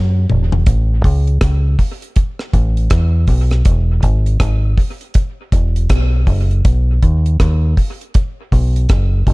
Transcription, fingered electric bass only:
0.00 0.25 F#2 medium
0.31 0.63 E1 medium
0.67 1.00 A1 medium
1.05 1.38 C#2 medium
1.42 1.75 C#2 medium
2.54 2.87 A1 loud
2.92 3.25 E2 loud
3.28 3.62 B1 loud
3.66 3.99 E1 loud
4.03 4.37 G#1 loud
4.41 4.74 G#1 medium
5.53 5.86 E1 medium
5.90 6.24 B1 loud
6.27 6.61 F#1 medium
6.65 6.99 B1 medium
7.03 7.36 D#2 loud
7.40 7.74 D#2 medium
8.53 8.86 B1 loud
8.90 9.24 F#1 loud
9.27 9.33 F#1 medium

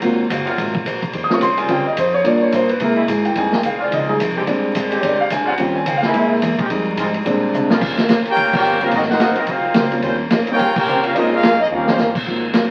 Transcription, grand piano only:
0.01 0.22 F#3 medium
0.01 0.22 A#3 soft
0.01 0.22 C4 soft
0.01 0.23 F4 medium
1.24 1.32 D#6 medium
1.29 1.47 G3 soft
1.29 1.47 C4 soft
1.29 1.47 C#4 soft
1.29 1.47 F4 medium
1.34 1.42 C#6 medium
1.42 1.58 C6 medium
1.58 1.69 G#5 loud
1.68 1.83 G3 soft
1.68 1.84 C4 soft
1.68 1.84 C#4 soft
1.68 1.84 F4 medium
1.68 1.86 G5 medium
1.87 1.97 D#5 medium
1.99 2.14 C5 medium
2.14 2.25 C#5 medium
2.24 2.67 A#3 medium
2.24 2.67 D4 medium
2.24 2.67 F4 medium
2.24 2.42 D5 medium
2.42 2.53 C#5 medium
2.55 2.70 C5 medium
2.70 2.80 B4 medium
2.80 3.00 G#3 medium
2.80 3.00 A#3 soft
2.80 3.01 E4 medium
2.80 2.92 A#4 medium
3.25 3.36 G5 medium
3.36 3.56 G3 soft
3.36 3.56 G#3 soft
3.36 3.57 D#4 medium
3.36 3.53 G#5 loud
3.54 3.64 G5 medium
3.66 3.81 F5 medium
3.81 3.92 D5 medium
3.94 4.09 D#5 medium
4.08 4.18 G3 soft
4.08 4.18 G#3 soft
4.08 4.18 D#4 medium
4.08 4.16 G#4 medium
4.47 4.89 G3 medium
4.47 4.89 G#3 medium
4.47 4.89 C4 medium
4.47 4.90 D4 medium
5.01 5.03 C#5 medium
5.06 5.20 D5 medium
5.20 5.31 F5 medium
5.32 5.48 G#5 loud
5.47 5.58 F#5 medium
5.58 5.78 G3 medium
5.58 5.78 C4 soft
5.58 5.78 C#4 medium
5.58 5.79 F4 medium
5.58 5.76 G5 medium
5.76 5.86 G#5 medium
5.88 5.96 G5 medium
5.97 6.05 F5 medium
6.02 6.04 G5 medium
6.02 6.45 G#5 medium
6.13 6.56 G#3 medium
6.13 6.56 A#3 medium
6.13 6.56 E4 medium
6.69 7.22 G3 medium
6.69 7.22 G#3 medium
6.69 7.23 D#4 medium
7.25 7.67 G3 medium
7.25 7.68 G#3 medium
7.25 7.68 C4 medium
7.25 7.68 D4 medium
8.80 8.91 F#3 medium
8.80 8.91 A#3 medium
8.80 8.91 C4 medium
8.80 8.92 D#4 medium
8.80 8.92 F4 medium
9.91 10.01 G3 medium
9.91 10.02 A#3 medium
9.91 10.02 C4 medium
9.91 10.02 C#4 medium
9.91 10.02 F4 medium
10.03 10.18 G3 medium
10.03 10.18 A#3 medium
10.03 10.19 C4 medium
10.03 10.19 C#4 medium
10.03 10.19 F4 medium
10.47 10.58 G3 medium
10.47 10.58 A#3 medium
10.47 10.58 C4 medium
10.47 10.58 C#4 medium
10.47 10.59 D#4 medium
11.15 11.30 G#3 medium
11.15 11.30 A#3 medium
11.15 11.30 C4 medium
11.15 11.31 C#4 medium
11.15 11.31 F4 medium
11.71 11.86 G3 medium
11.71 11.86 A#3 medium
11.71 11.86 C4 medium
11.71 11.86 C#4 medium
11.71 11.87 F4 medium
12.26 12.41 F#3 medium
12.26 12.42 A#3 medium
12.26 12.42 C4 medium
12.26 12.42 D#4 medium
12.26 12.42 F4 medium

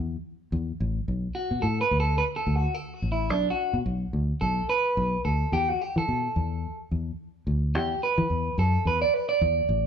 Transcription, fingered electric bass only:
0.00 0.15 E2 medium
0.52 0.71 E2 loud
0.80 0.99 A1 medium
1.08 1.27 B1 medium
1.51 1.59 B2 medium
1.63 1.82 A2 medium
1.91 2.21 D2 medium
2.47 2.65 D2 medium
3.02 3.30 A1 medium
3.30 3.49 B1 medium
3.73 3.82 B2 medium
3.86 4.04 B1 medium
4.13 4.32 D2 medium
4.42 4.60 B1 loud
4.97 5.16 B1 loud
5.25 5.44 D2 medium
5.52 5.71 E2 medium
5.96 6.04 E3 medium
6.08 6.27 B2 medium
6.36 6.65 E2 medium
6.91 7.10 E2 medium
7.47 7.75 D2 medium
7.75 7.94 E2 medium
8.18 8.26 E3 loud
8.30 8.49 E2 medium
8.58 8.76 F#2 loud
8.85 9.04 E2 medium
9.41 9.60 E2 loud
9.69 9.87 A1 loud

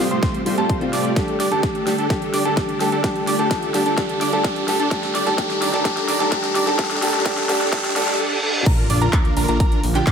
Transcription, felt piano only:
0.45 0.78 G3 medium
0.45 0.78 A3 medium
0.45 0.79 C4 medium
0.45 0.79 F4 loud
0.81 1.13 G3 loud
0.81 1.14 A3 medium
0.81 1.14 C4 medium
0.81 1.14 F4 loud
1.16 1.48 G3 medium
1.16 1.49 A3 medium
1.16 1.49 D4 medium
1.16 1.49 G4 loud
1.51 1.84 G3 medium
1.51 1.84 A3 medium
1.51 1.84 D4 medium
1.51 1.84 G4 medium
1.86 1.92 G3 medium
1.86 1.92 A3 medium
1.86 1.93 D4 medium
1.86 1.93 G4 loud
2.10 2.42 G3 medium
2.10 2.42 A3 medium
2.10 2.43 D4 medium
2.10 2.43 G4 loud
2.45 2.78 G3 medium
2.45 2.78 A3 medium
2.45 2.78 D4 medium
2.45 2.78 G4 medium
2.80 2.86 G3 medium
2.80 2.86 A3 medium
2.80 2.86 D4 medium
2.80 2.87 G4 loud
3.03 3.36 G3 loud
3.03 3.36 A3 medium
3.03 3.36 D4 medium
3.03 3.37 G4 loud
3.39 3.71 G3 medium
3.39 3.71 A3 medium
3.39 3.72 D4 medium
3.39 3.72 G4 medium
3.74 3.80 G3 loud
3.74 3.80 A3 medium
3.74 3.80 D4 medium
3.74 3.80 G4 loud
3.97 4.30 G3 medium
3.97 4.30 A3 medium
3.97 4.30 D4 medium
3.97 4.30 G4 loud
4.32 4.65 G3 medium
4.32 4.65 A3 medium
4.32 4.65 D4 medium
4.32 4.65 G4 medium
4.67 4.73 G3 medium
4.67 4.74 A3 medium
4.67 4.74 D4 medium
4.67 4.74 G4 loud
4.91 5.23 G3 loud
4.91 5.24 A3 medium
4.91 5.24 D4 medium
4.91 5.24 G4 loud
5.26 5.36 G3 medium
5.26 5.36 A3 medium
5.26 5.36 D4 medium
5.26 5.37 G4 medium
5.38 5.70 G3 medium
5.38 5.70 A3 medium
5.38 5.71 D4 medium
5.38 5.71 G4 loud
5.73 5.83 G3 medium
5.73 5.83 A3 medium
5.73 5.83 D4 medium
5.73 5.84 G4 medium
5.84 6.17 G3 loud
5.84 6.17 A3 medium
5.84 6.18 D4 medium
5.84 6.18 G4 loud
6.20 6.30 G3 medium
6.20 6.30 A3 medium
6.20 6.30 D4 medium
6.20 6.30 G4 medium
6.31 6.64 G3 loud
6.31 6.64 A3 medium
6.31 6.64 D4 medium
6.31 6.65 G4 loud
6.66 6.77 G3 medium
6.66 6.77 A3 medium
6.66 6.77 D4 medium
6.66 6.77 G4 medium
6.78 7.00 G3 loud
6.78 7.00 A3 loud
6.78 7.01 D4 loud
6.78 7.01 G4 loud
7.02 7.24 G3 loud
7.02 7.24 A3 medium
7.02 7.24 D4 medium
7.02 7.24 G4 loud
7.25 7.47 G3 loud
7.25 7.47 A3 medium
7.25 7.47 D4 medium
7.25 7.48 G4 loud
7.49 7.70 G3 loud
7.49 7.71 A3 loud
7.49 7.71 D4 medium
7.49 7.71 G4 loud
7.72 7.94 G3 loud
7.72 7.94 A3 loud
7.72 7.94 D4 medium
7.72 7.94 G4 loud
7.96 8.17 G3 loud
7.96 8.18 A3 loud
7.96 8.18 D4 medium
7.96 8.18 G4 loud

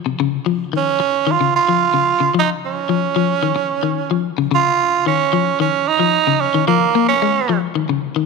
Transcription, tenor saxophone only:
0.77 1.33 C#4 medium
1.31 1.55 F4 medium
1.56 2.32 F4 medium
2.39 2.50 D#4 medium
2.66 4.22 C#4 medium
4.55 5.03 F4 loud
5.07 5.56 C#4 medium
5.61 5.89 C#4 medium
5.88 6.42 D#4 loud
6.41 6.66 C#4 medium
6.67 7.05 A#3 medium
7.08 7.58 C#4 medium

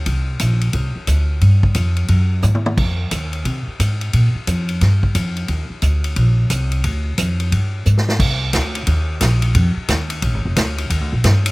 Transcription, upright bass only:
0.06 0.39 C2 medium
0.40 0.73 A#1 medium
0.73 0.94 C2 medium
0.96 muted upright bass stroke soft
1.07 1.41 D2 medium
1.41 1.74 G2 medium
1.75 2.08 F2 medium
2.09 2.42 F#2 medium
2.43 2.76 G#2 medium
2.77 3.10 F2 medium
3.11 3.44 D#2 medium
3.45 3.66 C3 medium
3.67 muted upright bass stroke soft
3.80 4.12 G#2 medium
4.14 4.34 A#2 medium
4.35 muted upright bass stroke soft
4.47 4.80 F2 medium
4.81 5.14 G2 medium
5.15 5.48 F2 medium
5.49 5.69 D#2 medium
5.70 muted upright bass stroke soft
5.82 6.16 D2 medium
6.16 6.49 A#1 medium
6.50 6.83 C2 medium
6.84 7.17 D2 medium
7.18 7.51 F2 medium
7.52 7.85 G2 medium
7.86 8.19 G#2 medium
8.19 8.52 C2 medium
8.53 8.86 D2 medium
8.87 9.20 D#2 medium
9.21 9.54 A#1 medium
9.55 9.75 F2 medium
9.76 muted upright bass stroke soft
9.89 10.22 D#2 medium
10.22 10.34 A#1 medium
10.34 10.45 G#1 medium
10.45 10.56 F1 medium
10.56 10.89 D2 medium
10.90 11.01 D#2 medium
11.01 11.12 D2 medium
11.13 11.23 A#1 medium
11.24 11.52 G2 loud

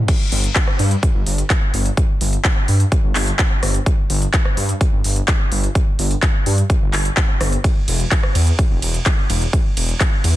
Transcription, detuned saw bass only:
0.32 0.48 G1 loud
0.79 0.95 G2 medium
1.15 1.23 G1 loud
1.27 1.43 G1 medium
1.74 1.90 G1 loud
2.21 2.37 G1 loud
2.68 2.84 G2 medium
3.04 3.12 G1 loud
3.15 3.32 G1 medium
3.63 3.79 G1 loud
4.10 4.26 G1 loud
4.57 4.73 G2 medium
4.93 5.01 G1 loud
5.04 5.21 G1 medium
5.52 5.68 G1 loud
5.99 6.15 G1 loud
6.46 6.62 G2 medium
6.82 6.90 G1 loud
6.93 7.10 G1 medium
7.41 7.57 G1 medium
7.88 8.04 E1 loud
8.35 8.51 E2 medium
8.71 8.79 E1 loud
8.82 8.99 E1 medium
9.30 9.46 E1 loud
9.77 9.93 E1 loud
10.24 10.36 E2 medium

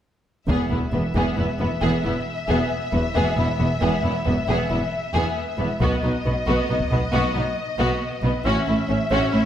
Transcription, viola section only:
0.49 0.69 B3 soft
0.72 0.80 B3 soft
0.94 1.02 B3 soft
1.15 1.36 B3 soft
1.37 1.45 B3 soft
1.60 1.68 B3 soft
1.82 2.02 B3 soft
2.04 2.12 B3 soft
2.48 2.69 B3 soft
2.92 3.00 B3 soft
3.15 3.35 B3 soft
3.36 3.44 B3 soft
3.59 3.67 B3 soft
3.81 4.02 B3 soft
4.04 4.12 B3 soft
4.26 4.34 B3 soft
4.49 4.69 B3 soft
4.72 4.80 B3 soft
5.15 5.36 B3 soft
5.59 5.67 B3 soft
5.81 6.02 B3 medium
6.04 6.12 B3 soft
6.26 6.34 B3 soft
6.47 6.68 B3 soft
6.69 6.77 B3 soft
6.92 7.00 B3 soft
7.13 7.33 B3 soft
7.34 7.42 B3 soft
7.78 7.99 B3 medium
8.23 8.31 B3 soft
8.45 8.65 C#4 medium
8.67 8.75 C#4 soft
8.88 8.96 C#4 soft
9.11 9.31 C#4 medium
9.33 9.41 C#4 soft

